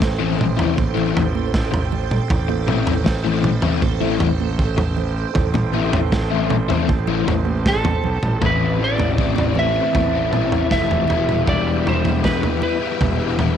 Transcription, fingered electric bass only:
0.00 0.63 A1 loud
0.78 1.12 A1 medium
1.16 2.19 A1 medium
2.30 3.67 A1 loud
3.82 4.17 A1 medium
4.22 5.24 A1 medium
5.36 6.73 A1 loud
6.90 7.23 A1 medium
7.27 7.95 A1 medium
8.04 8.20 B1 medium
8.23 8.39 A1 medium
8.42 9.79 A1 loud
9.95 10.63 A1 medium
10.71 11.05 F1 medium
11.10 12.47 E1 medium
13.01 13.57 E1 medium

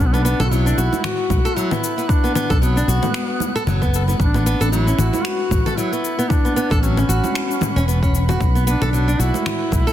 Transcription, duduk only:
0.07 0.16 B3 medium
0.14 0.47 D4 medium
0.45 0.53 F#4 medium
0.52 1.04 E4 loud
1.04 1.58 F#4 loud
1.57 2.11 E4 medium
2.10 2.56 D4 loud
2.56 2.64 D4 medium
2.62 3.94 B3 medium
4.20 4.69 D4 loud
4.72 5.26 E4 loud
5.24 5.71 F#4 loud
5.71 5.78 F#4 medium
5.76 6.31 E4 medium
6.29 6.84 D4 loud
6.82 8.14 C#4 medium
8.68 9.22 D4 loud
9.20 9.93 E4 loud

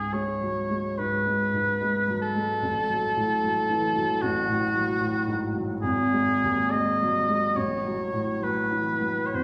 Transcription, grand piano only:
0.00 0.94 C#2 soft
0.00 0.30 G#2 soft
0.00 0.12 G#3 soft
0.12 0.59 G#3 soft
0.41 0.69 F#3 soft
0.70 1.14 G#3 soft
0.98 1.42 G#2 soft
1.26 1.70 G#3 soft
1.53 1.97 G#2 soft
1.81 2.24 G#3 soft
2.08 2.35 F#3 soft
2.35 2.62 G#3 soft
2.62 4.18 A1 soft
2.90 3.33 F#3 soft
3.16 3.59 A2 soft
3.44 3.85 F#3 soft
3.70 3.96 E3 soft
3.96 4.37 F#3 soft
4.22 5.78 A1 soft
4.48 4.90 A2 soft
4.75 5.16 F#3 soft
5.00 5.43 A2 soft
5.27 5.54 G#2 soft
5.55 5.82 F#3 soft
5.83 7.52 G#1 soft
6.12 6.60 G#3 soft
6.43 6.89 D#2 soft
6.73 7.17 G#3 soft
7.02 7.29 F#3 soft
7.29 7.56 G#3 soft
7.56 9.28 A1 soft
7.85 8.30 F#3 soft
8.13 8.59 A2 soft
8.42 8.89 F#3 soft
8.72 9.01 E3 soft
9.01 9.32 F#3 soft
9.34 9.44 G#1 soft

